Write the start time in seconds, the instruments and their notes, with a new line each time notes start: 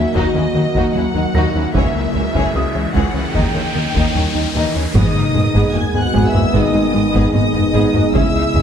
Already playing: ambient pad F#3 A#3 A#4 D#5, french horn section A#3 F#4, violin section E5, felt piano G#5 G#6, riser
0.14 double bass section D#2, analog synth bass D#2, cello section D#2, synth pluck D#3, viola section F#3 A#3, violin section D#4 F#4 D#5, taiko
0.34 cello section D#2, analog synth bass D#3, viola section F#3 A#3, synth pluck A#3, violin section C#4 E4
0.54 double bass section D#2, cello section D#2, analog synth bass D#3, viola section F#3 A#3, synth pluck A#3, violin section D#4 F#4
0.74 cello section D#2, analog synth bass D#2, synth pluck D#3, viola section F#3 A#3, violin section D#4 F#4, taiko
0.93 analog synth bass D#2, double bass section D#2, cello section D#2, viola section F#3 A#3, synth pluck F#3, violin section C#4 E4 F#5
1.14 analog synth bass D#2, cello section D#2, viola section F#3 A#3, synth pluck D#4, violin section D#4 F#4
1.34 analog synth bass D#2, double bass section D#2, cello section D#2, synth pluck D#3, viola section F#3 A#3, violin section D#4 F#4, felt piano A#6
1.54 cello section D#2, analog synth bass D#2, viola section F#3 A#3, violin section C#4 E4, synth pluck D#4
1.74 double bass section C#2, analog synth bass C#2, cello section C#2, synth pluck C#3, viola section E3 C#4, ambient pad E3 C#4 G#4 C#5, french horn section G#3 E4, violin section G#4 C#5 E5, taiko
1.95 analog synth bass C#2
2.13 double bass section C#2, cello section C#2, analog synth bass C#2, viola section E3 C#4, synth pluck C#4, violin section C#5
2.17 violin section G#4
2.33 analog synth bass C#2, cello section C#2, synth pluck C#3, viola section E3 C#4, violin section G#4 C#5, taiko
2.55 cello section C#2, double bass section C#2, analog synth bass C#2, viola section E3 C#4, synth pluck C#4, violin section F#4 B4, felt piano D#6
2.74 cello section C#2, analog synth bass C#2, synth pluck E3, viola section E3 C#4, violin section G#4 C#5
2.94 cello section C#2, double bass section C#2, analog synth bass C#2, synth pluck C#3, viola section E3 C#4, violin section G#4 C#5 F#5, taiko
3.14 analog synth bass C#2, cello section C#2, viola section E3 C#4, synth pluck C#4, violin section F#4 B4
3.34 analog synth bass D#2, cello section D#2, double bass section D#2, synth pluck D#3, viola section D#3 A#3, ambient pad A#3 D#4 A#4 D#5, french horn section A#3 D#4, violin section D#4 D#5 G5, taiko
3.54 cello section D#2, analog synth bass D#3, viola section D#3 A#3, synth pluck A#3, violin section C#4 C#5
3.74 double bass section D#2, cello section D#2, viola section D#3 A#3, analog synth bass D#3, synth pluck A#3, violin section D#4 D#5
3.94 cello section D#2, analog synth bass D#2, viola section D#3 A#3, synth pluck D#3, violin section D#4 D#5, taiko
4.14 cello section D#2, analog synth bass D#2, double bass section D#2, viola section D#3, synth pluck G3, violin section C#4 C#5
4.34 cello section D#2, analog synth bass D#2, synth pluck D#4, violin section D#4 D#5
4.54 cello section D#2, double bass section D#2, analog synth bass D#2, synth pluck D#3, viola section E3, violin section D#4 D#5
4.74 cello section D#2, analog synth bass D#2, violin section C#4 C#5, synth pluck D#4
4.93 double bass section G#1, cello section G#2, analog synth bass G#2, trombone section D#3 B3, ambient pad G#3 B3 G#4 D#5, synth pluck G#3, viola section B3 G#4, french horn section D#4, violin section D#5 D#6, taiko, sub drop
5.15 analog synth bass G#2
5.34 double bass section G#1, cello section G#2, analog synth bass G#2, viola section B3 G#4, synth pluck G#4, taiko low-mid
5.53 cello section G#2, analog synth bass G#2, synth pluck G#3, viola section B3 G#4, taiko
5.74 double bass section G#1, cello section G#2, analog synth bass G#2, viola section A#3 F#4, synth pluck G#4, french horn section G#4, violin section G#5 G#6
5.94 cello section G#2, analog synth bass G#2, viola section B3 G#4, synth pluck B3
6.01 french horn section F#4, violin section F#5 F#6
6.13 double bass section G#1, cello section G#2, analog synth bass G#2, synth pluck G#3, viola section B3 G#4, felt piano G#4 G#5, taiko
6.28 french horn section E4, violin section E5 E6
6.34 cello section G#2, analog synth bass G#2, viola section A#3 F#4, synth pluck G#4, taiko low-mid
6.53 double bass section G#1, cello section G#2, analog synth bass G#2, synth pluck G#3, viola section B3 G#4, french horn section D#4, violin section D#5 D#6, taiko
6.73 cello section G#2, analog synth bass G#3, viola section A#3 F#4, synth pluck D#4
6.93 double bass section G#1, cello section G#2, analog synth bass G#3, viola section B3 G#4, synth pluck D#4
7.13 cello section G#2, analog synth bass G#2, synth pluck G#3, viola section B3 G#4, taiko
7.33 double bass section G#1, cello section G#2, analog synth bass G#2, viola section A#3 F#4, synth pluck B3, french horn section D#4, violin section D#5 D#6
7.54 cello section G#2, analog synth bass G#2, viola section B3 G#4, synth pluck G#4, taiko low-mid
7.74 double bass section G#1, cello section G#2, analog synth bass G#2, synth pluck G#3, viola section B3 G#4
7.94 analog synth bass G#2, cello section G#2, viola section A#3 F#4, synth pluck G#4, taiko low-mid
8.14 analog synth bass C#2, double bass section C#2, cello section C#3, trombone section C#3 G#3, synth pluck C#3, ambient pad C#4 C#5, viola section C#4 G#4, french horn section E4, violin section E5 E6, taiko
8.35 analog synth bass C#2
8.54 double bass section C#2, analog synth bass C#2, cello section C#3, synth pluck C#4, viola section C#4 G#4, taiko low-mid